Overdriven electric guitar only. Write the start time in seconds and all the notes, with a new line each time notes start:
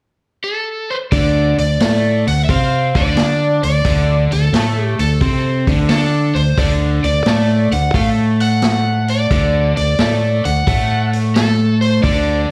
1.12 D3 D4
1.59 D3
1.81 A3 A4
2.27 D3
2.50 C4 C5
2.96 D3 D4
3.17 D4 D5
3.64 D3
3.86 D3 D4
4.33 D3
4.54 A3 A4
5.00 D3
5.21 C4 C5
5.68 D3 D4
5.89 D4 D5
6.37 D3
6.59 D3 D4
7.06 D3
7.27 A3 A4
7.73 D3
7.95 A3 A4
9.31 D3 D4
9.77 D3
9.99 A3 A4
10.45 D3
10.67 A3 A4
12.03 D3 D4